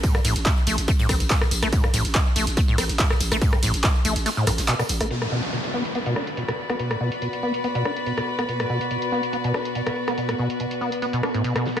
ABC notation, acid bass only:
X:1
M:4/4
L:1/16
Q:1/4=142
K:Bm
V:1 name="Acid bass" clef=bass
A,, G,, A,, z A,, z A, z A, A,, =C z A,, A,, z A, | A,, G,, A,, z A,, z A, z A, A,, =C z A,, A,, z A, | A,, G,, A,, z A,, z A, z A, A,, G,, z B,, B,, z A, | B,, A,, B,, z B,, z B, z B, B,, D z B,, B,, z B, |
B,, A,, B,, z B,, z B, z B, B,, D z B,, B,, z B, | B,, A,, B,, z B,, z B, z B, B,, D z B,, B,, z B, | B,, A,, B,, z B,, z B, z B, B,, D A,, B,, B,, F, B, |]